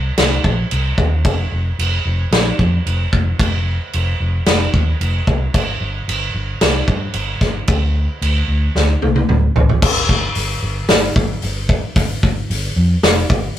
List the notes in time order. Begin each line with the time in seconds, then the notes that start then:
0.18 C2, snare, crash
0.44 A#1, kick
0.71 C2, crash
0.98 D#2, kick
1.25 F1, kick, crash
1.52 F1
1.79 F1, crash
2.05 F1
2.31 A#1, snare, crash
2.59 F2, kick
2.86 F1, crash
3.12 F1, kick
3.39 F1, kick, crash
3.93 F1, crash
4.20 F1
4.46 F1, snare, crash
4.74 D#2, kick
5.01 F1, crash
5.27 C2, kick
5.54 G1, kick, crash
5.81 G1
6.08 G1, crash
6.34 G1
6.61 C2, snare, crash
6.88 G2, kick
7.14 G1, crash
7.41 G1, kick, snare
7.68 D2, kick, crash
8.22 D2, crash
8.48 D2
8.75 D2, snare
9.02 C2, high tom
9.16 high tom
9.28 D2, mid tom
9.56 A1, floor tom
9.69 floor tom
9.82 G1, kick, crash
10.09 G1, kick
10.35 G1, open hi-hat
10.62 G1
10.89 G1, snare, open hi-hat
11.16 G1, kick
11.42 G1, open hi-hat
11.69 kick
11.96 G1, kick, open hi-hat
12.23 G1, kick
12.50 G1, open hi-hat
12.76 F2
13.03 F1, snare, open hi-hat
13.30 G1, kick